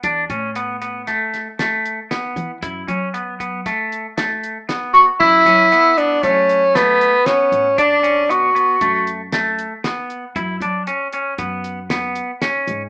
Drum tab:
CC |----------|----------|x---------|----------|
HH |xxxxxxxxxx|xxxxxxxxxx|-xxxxxxxxx|xxxxxxxxxx|
SD |----ooo-o-|----o-o-o-|-oo---o-o-|------o-o-|
BD |oo--------|oo-oo-----|o---o-----|o---o-----|

CC |----------|
HH |xxxxxxxxxx|
SD |------o-o-|
BD |o---o-----|